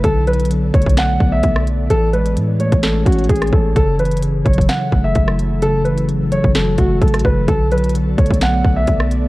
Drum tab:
HH |x-----------x--x--x--x--x-----------x---x---x---x-----------------------x-----------x-----------|x-----------x-----x-----x-----------x-----x-----x-----------x--x--x--x--x--x--x--x--------------|x-----------x--x--x--x--x-----------x---x---x---x-----------------------x-----------x-----------|x-----------x-----x-----x-----------x-----------x-----------x-----------x--x--x--x--------------|
SD |------------------------------------------------o-----------------------------r-----------------|------------------------------------------------o-----------------------------r-----------------|------------------------------------------------o-----------------------------r-----------------|------------------------------------------------o-----------------------------r-----------------|
BD |o-----------------------------------o-----o-----------------o-----------o-----------------------|------------------------------------------o-----------------o-----------o-----------o-----------|o-----------------------------------o-----o-----------------o-----------o-----------------------|------------------------------------------o-----------------o-----------o-----------o-----------|

HH |x-----------x--x--x--x--x-----------x---x---x---x-----------------------x-----------x-----------|
SD |------------------------------------------------o-----------------------------r-----------------|
BD |o-----------------------------------o-----o-----------------o-----------o-----------------------|